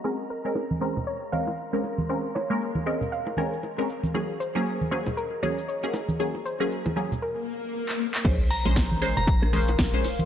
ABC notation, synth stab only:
X:1
M:4/4
L:1/16
Q:"Swing 16ths" 1/4=117
K:Bbm
V:1 name="Synth stab"
[A,CDB]2 z [A,CDB]3 [A,CDB] z3 [A,CDB] z2 [A,CDB] z2 | [A,CDB]2 z [A,B,DB]3 [A,CDB] z3 [A,CDB] z2 [A,CDB] z2 | [G,B,DA]2 z [G,B,DA]3 [G,B,DA] z3 [G,B,DA] z2 [G,B,DA] z2 | [G,B,DA]2 z [G,B,DA]3 [G,B,DA] z8 z |
[A,Dc]2 z [A,Dc]3 [A,Dc] z3 [A,Dc] z2 [A,Dc] z2 |]